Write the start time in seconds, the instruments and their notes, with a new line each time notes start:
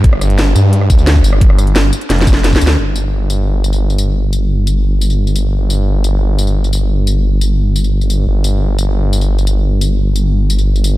0.04 detuned saw bass G1, kick, closed hi-hat
0.13 cross-stick
0.21 cross-stick, closed hi-hat, tambourine
0.30 closed hi-hat
0.39 snare, closed hi-hat
0.56 detuned saw bass G2, closed hi-hat, tambourine
0.73 closed hi-hat
0.81 cross-stick
0.90 detuned saw bass D2, kick, closed hi-hat, tambourine
0.99 tambourine
1.07 snare, closed hi-hat
1.16 kick, tambourine
1.24 detuned saw bass G1, closed hi-hat, tambourine
1.33 cross-stick
1.41 kick, closed hi-hat
1.50 cross-stick
1.58 cross-stick, closed hi-hat, tambourine
1.67 closed hi-hat
1.76 detuned saw bass G1, snare, closed hi-hat
1.93 closed hi-hat, tambourine
2.01 closed hi-hat
2.10 detuned saw bass F1, snare, closed hi-hat
2.18 snare, closed hi-hat
2.27 kick, closed hi-hat, tambourine
2.33 snare, tambourine
2.44 snare, closed hi-hat
2.53 kick, snare, tambourine
2.61 detuned saw bass D2, closed hi-hat, tambourine
2.67 snare
2.79 detuned saw bass G1
2.96 tambourine
3.30 tambourine
3.64 tambourine
3.73 tambourine
3.90 tambourine
3.98 tambourine
4.33 tambourine
4.67 tambourine
5.01 tambourine
5.10 tambourine
5.27 tambourine
5.36 tambourine
5.70 tambourine
6.04 tambourine
6.38 tambourine
6.47 tambourine
6.64 tambourine
6.73 tambourine
7.07 tambourine
7.41 tambourine
7.76 tambourine
7.84 tambourine
8.01 tambourine
8.10 tambourine
8.27 detuned saw bass G1
8.44 tambourine
8.79 tambourine
9.13 tambourine
9.21 tambourine
9.38 tambourine
9.47 tambourine
9.81 tambourine
10.16 tambourine
10.50 tambourine
10.58 tambourine
10.76 tambourine
10.84 tambourine